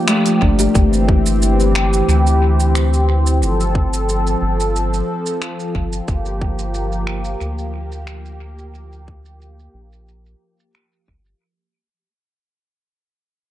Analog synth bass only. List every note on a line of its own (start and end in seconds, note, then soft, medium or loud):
0.42 0.68 G1 medium
0.75 2.02 G1 loud
2.08 3.43 D2 medium
3.42 4.36 G1 medium
4.42 5.02 G1 medium
5.75 6.01 G1 medium
6.08 7.35 G1 loud
7.41 9.68 D2 medium
9.74 10.35 A#1 medium
11.08 11.34 G1 medium